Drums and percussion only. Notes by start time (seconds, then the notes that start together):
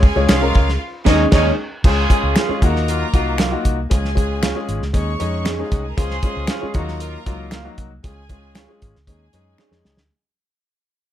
0.03 kick, ride
0.29 finger snap, snare, ride
0.55 kick, ride
0.69 snare
1.06 kick, snare, crash
1.32 kick, snare, crash
1.84 kick, crash
2.10 kick, closed hi-hat
2.36 finger snap, snare, closed hi-hat
2.62 kick, closed hi-hat
2.76 snare
2.88 closed hi-hat
3.14 kick, closed hi-hat
3.38 finger snap, snare, closed hi-hat
3.65 kick, closed hi-hat
3.91 kick, closed hi-hat
4.05 snare
4.17 kick, closed hi-hat
4.43 finger snap, snare, closed hi-hat
4.69 closed hi-hat
4.82 snare
4.94 kick, closed hi-hat
5.20 closed hi-hat
5.45 finger snap, snare, closed hi-hat
5.72 kick, closed hi-hat
5.98 kick, closed hi-hat
6.10 snare
6.23 kick, closed hi-hat
6.47 finger snap, snare, closed hi-hat
6.74 kick, closed hi-hat
6.88 snare
7.00 closed hi-hat
7.26 kick, closed hi-hat
7.51 finger snap, snare, closed hi-hat
7.78 kick, closed hi-hat
8.04 kick, closed hi-hat
8.29 kick, closed hi-hat
8.55 finger snap, snare, closed hi-hat
8.82 kick, closed hi-hat
8.96 snare
9.07 kick, closed hi-hat
9.33 closed hi-hat
9.58 finger snap, snare
9.72 snare
9.85 snare
9.97 snare